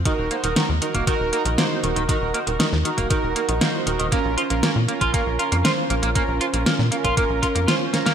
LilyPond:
<<
  \new Staff \with { instrumentName = "Analog polysynth" } { \time 4/4 \key ees \dorian \tempo 4 = 118 <ees' ges' bes'>8 <ees' ges' c''>16 <ees' ges' bes'>16 <ees' ges' bes'>16 r16 <ees' ges' bes'>8 <ees' ges' bes'>8 <ees' ges' bes'>16 <ees' ges' bes'>16 <ees' ges' c''>8 <ees' ges' bes'>8 | <ees' ges' bes'>8 <ees' ges' c''>16 <ees' ges' bes'>16 <ees' ges' bes'>16 r16 <ees' ges' bes'>8 <ees' ges' bes'>8 <ees' ges' bes'>16 <ees' ges' bes'>16 <ees' ges' c''>8 <ees' ges' bes'>8 | <des' f' bes'>8 <des' f' c''>16 <des' f' bes'>16 <des' f' bes'>16 r16 <des' f' bes'>8 <des' f' bes'>8 <des' f' bes'>16 <des' f' bes'>16 <des' f' c''>8 <des' f' bes'>8 | <des' f' bes'>8 <des' f' c''>16 <des' f' bes'>16 <des' f' bes'>16 r16 <des' f' bes'>8 <des' f' bes'>8 <des' f' bes'>16 <des' f' bes'>16 <des' f' c''>8 <des' f' bes'>8 | }
  \new Staff \with { instrumentName = "Clean electric guitar" } { \time 4/4 \key ees \dorian ees16 r16 bes16 ees16 ees16 r16 ees16 bes16 ees16 r16 bes16 ees16 bes16 r16 ees16 ees16 | ees16 r16 bes16 ees16 ees16 r16 ees16 bes16 ees16 r16 bes16 ees16 bes16 r16 ees16 ees16 | bes16 r16 f'16 bes16 bes16 r16 bes16 f'16 bes16 r16 f'16 bes16 f'16 r16 bes16 bes16 | bes16 r16 f'16 bes16 bes16 r16 bes16 f'16 bes16 r16 f'16 bes16 f'16 r16 bes16 bes16 | }
  \new Staff \with { instrumentName = "Analog synth bass" } { \clef bass \time 4/4 \key ees \dorian r16 ees,,16 r16 ees,,16 r16 ees,16 r16 ees,,16 r16 ees,,16 r16 bes,,16 r8 ees,,16 ees,,16 | r16 ees,,16 r16 ees,,16 r16 ees,16 r16 ees,,16 r16 ees,,16 r16 bes,,16 r8 ees,,16 ees,,16 | r16 bes,,16 r16 bes,,16 r16 bes,16 r16 bes,,16 r16 bes,,16 r16 f,16 r8 bes,,16 bes,,16 | r16 bes,,16 r16 bes,,16 r16 bes,16 r16 bes,,16 r16 bes,,16 r16 f,16 r4 | }
  \new DrumStaff \with { instrumentName = "Drums" } \drummode { \time 4/4 <hh bd>8 hh16 hh16 <hh sn>8 hh16 <hh bd>16 <hh bd>8 hh16 hh16 <hh sn>8 hh16 hh16 | <hh bd>8 hh16 hh16 <hh sn>16 sn16 hh16 <hh bd>16 <hh bd>8 hh16 hh16 <hh sn>8 hh16 hh16 | <hh bd>8 hh16 hh16 <hh sn>8 hh16 <hh bd>16 <hh bd>8 hh16 hh16 <hh sn>8 hh16 hh16 | <hh bd>8 hh16 hh16 <hh sn>16 sn16 hh16 <hh bd>16 <hh bd>8 <hh bd>16 hh16 <hh sn>8 <hh sn>16 <hh sn>16 | }
>>